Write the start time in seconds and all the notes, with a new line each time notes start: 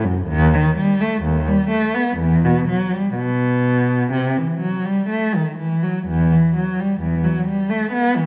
0.04 F#2
0.28 D#2
0.54 D#3
0.77 G3
1.01 A3
1.23 D#2
1.47 G3
1.71 A3
1.95 B3
2.17 E2
2.44 B2
2.68 F#3
2.93 G3
3.16 B2
4.13 C3
4.38 E3
4.60 F#3
4.85 G3
5.10 A3
5.35 D#3
5.59 E3
5.83 F#3
6.08 E2
6.32 E3
6.56 F#3
6.79 G3
7.01 E2
7.24 F#3
7.47 G3
7.69 A3
7.92 B3
8.16 E3